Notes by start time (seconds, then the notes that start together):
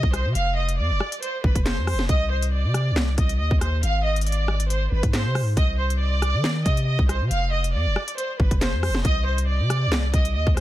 0.03 C2, kick
0.13 C5, cross-stick, closed hi-hat
0.25 C3
0.35 F1 F5, closed hi-hat
0.57 D#5
0.69 closed hi-hat
0.78 F2 D5
0.90 F1
1.00 cross-stick
1.12 closed hi-hat
1.22 C5, closed hi-hat
1.44 G#1 B4, kick
1.55 F1, kick, closed hi-hat
1.66 C5, snare, clap, closed hi-hat
1.77 F2
1.87 C5, cross-stick, open hi-hat
1.93 F1
1.99 snare
2.09 C2 D#5, kick, closed hi-hat
2.31 C5
2.42 closed hi-hat
2.53 D5
2.64 C3
2.74 cross-stick, closed hi-hat
2.91 C2
2.96 snare, clap
3.18 C2 D#5, kick, closed hi-hat
3.29 closed hi-hat
3.39 D#2 D#5
3.51 D#2, kick
3.61 C5, cross-stick, closed hi-hat
3.83 G#1 F5, closed hi-hat
4.05 D#5
4.16 closed hi-hat
4.21 closed hi-hat
4.26 D5, closed hi-hat
4.32 closed hi-hat
4.48 cross-stick
4.60 closed hi-hat
4.70 C5, closed hi-hat
4.92 G#1 B4
5.03 G#2, kick, closed hi-hat
5.13 C5, snare, clap, closed hi-hat
5.25 C3
5.35 cross-stick, open hi-hat
5.41 G#2
5.57 C2 D#5, kick, closed hi-hat
5.79 C5
5.90 closed hi-hat
6.00 D5
6.22 cross-stick, closed hi-hat
6.34 D#3
6.44 snare, clap
6.66 C3 D#5, kick, closed hi-hat
6.77 closed hi-hat
6.88 D#5
6.99 C2, kick
7.09 C5, cross-stick, closed hi-hat
7.21 C3
7.31 F1 F5, closed hi-hat
7.53 D#5
7.64 closed hi-hat
7.74 F2 D5
7.86 F1
7.96 cross-stick
8.08 closed hi-hat
8.18 C5, closed hi-hat
8.40 G#1 B4, kick
8.51 F1, kick, closed hi-hat
8.61 C5, snare, clap, closed hi-hat
8.73 F2
8.83 C5, cross-stick, open hi-hat
8.89 F1
8.95 snare
9.05 C2 D#5, kick, closed hi-hat
9.27 C5
9.38 closed hi-hat
9.49 D5
9.60 C3
9.70 cross-stick, closed hi-hat
9.87 C2
9.92 snare, clap
10.14 C2 D#5, kick, closed hi-hat
10.25 closed hi-hat
10.35 D#2 D#5
10.47 D#2, kick
10.57 C5, cross-stick, closed hi-hat